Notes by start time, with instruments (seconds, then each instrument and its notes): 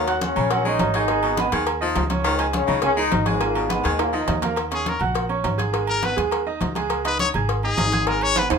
Already playing: upright bass D#2, trombone section F#2 F#3, baritone saxophone D#3
0.07 grand piano F#4 F#5 F#6, cowbell, high conga, low agogo
0.21 trombone section C#3 C#4, cowbell, high conga, low timbale
0.36 upright bass A#1, baritone saxophone C#3, grand piano C#4 C#5 C#6, high conga, low conga, low agogo
0.51 trombone section C#3 C#4, grand piano F#3 F#4 F#5, cowbell, high conga, low agogo
0.65 trombone section D#3 D#4, baritone saxophone G#3, grand piano C#4 C#5 C#6, high conga, low agogo
0.79 upright bass G#1, cowbell, high conga, low timbale, low agogo
0.94 trombone section D#3 D#4, baritone saxophone F#3, grand piano G#4 G#5 G#6, cowbell
1.08 grand piano G#3 G#4 G#5, cowbell, high conga, low agogo
1.23 baritone saxophone B2, high conga, low agogo
1.37 trombone section G#2 G#3, grand piano B3 B4 B5, cowbell, high conga, low timbale
1.52 upright bass D#2, baritone saxophone D#3, grand piano G#4 G#5 G#6, cowbell, high conga
1.67 cowbell, high conga, low agogo
1.81 baritone saxophone F3, grand piano D#4 D#5 D#6, high conga
1.95 upright bass C#2, cowbell, high conga, low timbale, low agogo
2.10 grand piano C#4 C#5 C#6, cowbell, high conga, low agogo
2.24 trombone section G#2 G#3, baritone saxophone D#3, cowbell, high conga, low agogo
2.39 grand piano G#4 G#5 G#6, cowbell, high conga, low agogo
2.53 trombone section C#3 C#4, cowbell, high conga, low timbale
2.67 upright bass C#2, baritone saxophone C#3, grand piano D#4 D#5 D#6, high conga, low conga, low agogo
2.82 trombone section C#3 C#4, grand piano G#3 G#4 G#5, cowbell, high conga, low conga, low agogo
2.97 trombone section D#3 D#4, baritone saxophone G#3, grand piano D#4 D#5 D#6, high conga, low agogo
3.12 upright bass G#1, cowbell, high conga, low timbale, low agogo
3.26 trombone section G#2 G#3, baritone saxophone F#3, grand piano G#4 G#5 G#6, cowbell, high conga
3.40 trombone section A#2 A#3, grand piano G#3 G#4 G#5, cowbell, high conga, low agogo
3.55 baritone saxophone B2, high conga, low agogo
3.69 trombone section G#2 G#3, grand piano B3 B4 B5, cowbell, high conga, low timbale
3.84 upright bass D#2, baritone saxophone D#3, grand piano G#4 G#5 G#6, cowbell
3.99 trombone section A#2 A#3, cowbell, high conga, high timbale, low agogo
4.13 trombone section D#3 D#4, baritone saxophone F3, grand piano D#4 D#5 D#6, high conga, high timbale
4.28 upright bass D#2, cowbell, high conga, low timbale, low agogo
4.42 grand piano A#3 A#4 A#5, cowbell, high conga, low timbale, low agogo
4.56 cowbell, high conga, low agogo
4.71 grand piano C#4 C#5 C#6, trumpet G#4, cowbell, high conga, low agogo
4.85 trumpet A#4, cowbell, high conga, low timbale
5.00 upright bass A#1, grand piano F#4 F#5 F#6, high conga, low conga, low agogo
5.15 cowbell, high conga, low agogo
5.29 grand piano C#4 C#5 C#6, high conga, low agogo
5.44 upright bass G#1, cowbell, high conga, low timbale, low agogo
5.58 grand piano G#4 G#5 G#6, cowbell, high conga
5.73 grand piano G#3 G#4 G#5, cowbell, high conga, low agogo
5.87 trumpet A#4, high conga, low agogo
6.02 grand piano B3 B4 B5, trumpet B4, cowbell, high conga, low timbale
6.17 upright bass D#2, grand piano G#3 G#4 G#5, cowbell, high conga
6.31 cowbell, high conga, low agogo
6.46 grand piano D#4 D#5 D#6, high conga
6.61 upright bass C#2, cowbell, high conga, low timbale, low agogo
6.75 grand piano G#3 G#4 G#5, cowbell, high conga, low agogo
6.90 cowbell, high conga, low agogo
7.05 grand piano D#4 D#5 D#6, trumpet B4, cowbell, high conga, low agogo
7.19 trumpet C#5, cowbell, high conga, low timbale
7.34 upright bass G#1, grand piano G#4 G#5 G#6, high conga, low conga, low agogo
7.48 cowbell, high conga, low agogo
7.63 grand piano D#4 D#5 D#6, trumpet G#4, high conga, low agogo
7.77 upright bass G#1, cowbell, high conga, low timbale, low agogo
7.92 grand piano G#4 G#5 G#6, cowbell, high conga
8.07 grand piano G#3 G#4 G#5, trumpet A#4, cowbell, low agogo
8.21 trumpet C#5, high conga, low agogo
8.36 grand piano B3 B4 B5, trumpet B4, cowbell, high conga, high timbale
8.50 upright bass D#2, grand piano G#3 G#4 G#5, trumpet G#4, cowbell, high timbale